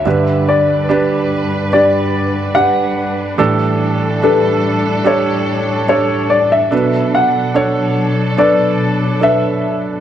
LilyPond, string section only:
\new Staff \with { instrumentName = "String section" } { \clef bass \time 4/4 \key a \mixolydian \tempo 4 = 72 << { <g, g b'>1 | <a, g a'>1 | <b, fis a'>1 | } \\ { d'1~ | d'1~ | d'1 | } >> }